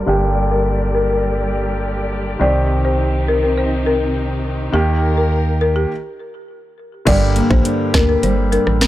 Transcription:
0.00 2.37 G3 medium
0.00 5.86 G4 medium
0.00 2.37 A#4 medium
0.00 2.37 D5 medium
0.06 2.37 G1 medium
0.06 2.36 D3 medium
0.06 2.37 A#3 medium
0.06 0.20 G4 medium
0.06 2.37 G4 medium
0.51 0.64 A#4 medium
0.95 1.07 A#4 medium
1.10 1.22 A#4 medium
2.39 4.70 C2 medium
2.39 4.72 C3 medium
2.39 4.69 D#3 medium
2.39 4.70 C4 medium
2.39 4.72 C4 medium
2.39 5.87 D#4 medium
2.39 4.70 G4 medium
2.39 2.53 D5 medium
2.85 2.97 C5 medium
3.28 3.41 A#4 medium
3.43 3.55 A#4 medium
3.58 3.70 C5 medium
3.86 3.99 A#4 medium
4.73 5.86 D#2 medium
4.73 5.87 D#3 medium
4.73 5.89 D#3 medium
4.73 5.88 A#3 medium
4.73 4.86 G4 loud
4.73 5.89 G4 medium
4.73 5.89 A#4 medium
5.17 5.30 A#4 medium
5.61 5.74 A#4 medium
5.76 5.88 G4 medium
7.05 7.42 G1 loud
7.05 8.87 G2 medium
7.05 8.87 D3 medium
7.05 8.87 G3 medium
7.05 8.87 A#3 medium
7.05 7.64 D4 medium
7.05 8.87 G4 medium
7.05 7.19 D5 loud
7.05 kick loud
7.05 closed hi-hat medium
7.05 crash loud
7.36 7.93 A#3 medium
7.36 closed hi-hat medium
7.51 7.62 A#1 loud
7.51 7.63 C5 medium
7.51 kick loud
7.65 8.51 D4 medium
7.65 closed hi-hat medium
7.94 8.18 D2 medium
7.94 8.80 A#3 medium
7.94 8.07 A#4 medium
7.94 kick loud
7.94 cross-stick medium
7.94 snare loud
7.94 closed hi-hat medium
8.09 8.21 A#4 medium
8.23 8.59 G1 loud
8.23 8.87 G3 medium
8.23 8.36 C5 medium
8.23 closed hi-hat medium
8.52 8.87 D4 medium
8.52 8.65 A#4 medium
8.52 closed hi-hat medium
8.67 8.87 A1 medium
8.67 cross-stick medium
8.81 8.87 A#3 medium
8.81 cross-stick loud
8.81 snare loud
8.81 closed hi-hat medium

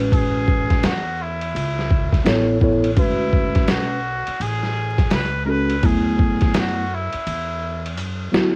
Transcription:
0.00 0.80 A1 medium
0.00 0.92 G#3 medium
0.00 0.92 C#4 medium
0.00 0.93 F#4 medium
0.00 0.93 B4 medium
0.12 0.87 G#4 loud
0.12 kick loud
0.12 ride medium
0.48 kick medium
0.70 kick medium
0.70 snare soft
0.70 ride medium
0.83 1.51 E2 medium
0.83 1.23 F#4 medium
0.83 snare loud
0.83 hi-hat pedal medium
0.83 ride medium
1.22 2.28 E4 medium
1.41 ride medium
1.55 2.23 C#2 medium
1.55 ride medium
1.79 snare soft
1.90 kick medium
2.13 kick medium
2.13 snare soft
2.13 ride medium
2.25 2.94 A1 medium
2.25 2.56 B3 medium
2.25 2.56 E4 medium
2.25 2.57 A4 medium
2.25 2.57 C#5 medium
2.25 snare loud
2.25 hi-hat pedal soft
2.25 ride medium
2.61 2.89 B3 medium
2.61 2.89 E4 medium
2.61 2.90 A4 medium
2.61 2.90 C#5 medium
2.61 kick medium
2.84 ride medium
2.96 3.65 D2 loud
2.96 3.97 G#3 medium
2.96 3.97 C#4 medium
2.96 3.71 E4 medium
2.96 3.98 F#4 medium
2.96 3.99 B4 medium
2.96 kick loud
2.96 ride medium
3.33 kick medium
3.55 kick medium
3.55 snare soft
3.55 ride medium
3.68 4.24 B1 medium
3.68 4.43 F#4 medium
3.68 snare loud
3.68 hi-hat pedal medium
3.68 ride medium
4.27 muted upright bass stroke soft
4.27 ride medium
4.40 5.12 A1 medium
4.40 5.12 G#4 loud
4.40 ride medium
4.63 snare soft
4.98 kick medium
4.98 snare soft
4.98 ride medium
5.10 5.80 C#2 medium
5.10 5.41 B4 loud
5.10 snare loud
5.10 hi-hat pedal soft
5.10 ride medium
5.45 5.74 G#3 medium
5.45 5.75 C#4 medium
5.45 5.75 F#4 medium
5.45 5.76 A4 medium
5.45 5.51 A#4 medium
5.49 5.87 B4 loud
5.70 ride medium
5.82 6.51 D2 loud
5.82 6.83 F#3 medium
5.82 6.84 A3 medium
5.82 6.83 B3 medium
5.82 6.84 E4 medium
5.82 6.61 G#4 medium
5.82 kick loud
5.82 ride medium
6.19 kick medium
6.41 kick medium
6.41 snare soft
6.41 ride medium
6.54 7.10 F#2 medium
6.54 snare loud
6.54 hi-hat pedal medium
6.54 ride medium
6.59 6.96 F#4 medium
6.94 7.99 E4 medium
7.12 muted upright bass stroke soft
7.12 ride medium
7.27 7.98 E2 medium
7.27 ride medium
7.86 ride medium
7.97 8.32 F#2 loud
7.97 hi-hat pedal soft
7.97 ride medium
8.32 8.56 D2 medium
8.32 8.56 F#3 medium
8.32 8.56 B3 medium
8.32 8.56 E4 medium
8.32 8.56 F#4 medium
8.32 snare loud

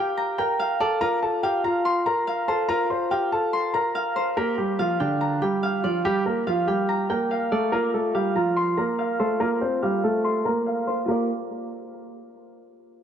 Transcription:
0.00 0.36 G4 medium
0.00 1.69 G4 loud
0.00 0.80 D5 medium
0.00 0.59 F5 medium
0.00 0.36 G5 medium
0.00 0.38 G5 medium
0.17 1.57 A#5 loud
0.38 0.78 A#4 medium
0.38 1.94 G5 medium
0.38 0.78 A#5 medium
0.59 1.43 F5 medium
0.80 0.98 A4 medium
0.80 2.65 D5 medium
0.80 0.97 A5 medium
1.01 2.69 F4 medium
1.01 1.19 A#4 medium
1.01 1.18 A#5 loud
1.22 1.40 A4 medium
1.22 1.39 A5 medium
1.43 1.61 G4 medium
1.43 2.27 F5 loud
1.43 1.60 G5 medium
1.64 2.04 F4 medium
1.64 2.04 F5 medium
1.64 2.06 A#5 medium
1.85 3.16 C6 loud
2.06 2.46 A#4 medium
2.06 3.46 A#5 medium
2.06 2.46 A#5 medium
2.27 3.11 F5 medium
2.48 2.66 A4 medium
2.48 4.15 C5 medium
2.48 2.65 A5 medium
2.69 5.21 F4 medium
2.69 2.86 A#4 medium
2.69 2.86 A#5 loud
2.90 3.08 C5 medium
2.90 3.07 C6 medium
3.11 3.29 G4 medium
3.11 3.95 F5 medium
3.11 3.28 G5 medium
3.32 3.72 A4 medium
3.32 3.72 A5 medium
3.53 4.84 C6 loud
3.74 4.33 A#4 medium
3.74 4.33 A#5 medium
3.74 5.14 A#5 medium
3.95 4.79 F5 medium
4.16 6.14 C5 medium
4.37 4.54 A#3 medium
4.37 6.04 G4 medium
4.37 4.54 A#4 loud
4.58 4.75 G3 medium
4.58 4.75 G4 medium
4.79 4.96 F3 medium
4.79 4.96 F4 medium
4.79 5.62 F5 medium
5.00 5.40 D3 medium
5.00 5.40 D4 medium
5.00 5.41 G5 medium
5.21 6.61 A#5 medium
5.42 5.82 G3 medium
5.42 5.81 G4 medium
5.42 6.67 G5 medium
5.63 6.46 F5 medium
5.83 6.01 F3 medium
5.83 6.01 F4 medium
5.83 7.51 D5 medium
6.05 6.22 G3 medium
6.05 8.40 G4 medium
6.05 6.22 G4 loud
6.26 6.43 A#3 medium
6.26 6.43 A#4 medium
6.47 6.64 F3 medium
6.47 6.64 F4 medium
6.47 7.30 F5 medium
6.67 7.07 G3 medium
6.67 7.07 G4 medium
6.67 7.09 G5 medium
6.89 8.29 A#5 loud
7.10 7.50 A#3 medium
7.10 7.49 A#4 medium
7.10 8.65 G5 medium
7.31 8.14 F5 medium
7.52 7.69 A3 medium
7.52 7.69 A4 medium
7.52 9.36 D5 medium
7.72 7.90 A#3 medium
7.72 9.40 F4 medium
7.72 7.89 A#4 loud
7.94 8.11 A3 medium
7.94 8.11 A4 medium
8.15 8.32 G3 medium
8.15 8.32 G4 medium
8.15 8.98 F5 medium
8.35 8.75 F3 medium
8.35 8.75 F4 medium
8.35 8.77 A#5 medium
8.56 9.61 C6 loud
8.77 9.17 A#3 medium
8.77 9.17 A#4 medium
8.77 9.82 A#5 medium
8.99 9.81 F5 medium
9.19 9.37 A3 medium
9.19 9.36 A4 medium
9.19 10.24 C5 medium
9.40 9.58 A#3 medium
9.40 10.45 F4 medium
9.40 9.57 A#4 loud
9.62 9.79 C4 medium
9.62 9.79 C5 medium
9.82 10.00 G3 medium
9.82 9.99 G4 medium
9.82 10.65 F5 medium
10.04 10.44 A3 medium
10.04 10.43 A4 medium
10.24 11.08 C6 loud
10.45 11.05 A#3 medium
10.45 11.04 A#4 medium
10.45 11.08 A#5 medium
10.66 11.08 F5 medium
10.87 11.08 C5 medium
11.05 11.28 A#3 medium
11.05 11.28 F4 medium
11.05 11.28 G4 medium
11.05 11.28 A#4 medium
11.11 11.28 D5 medium

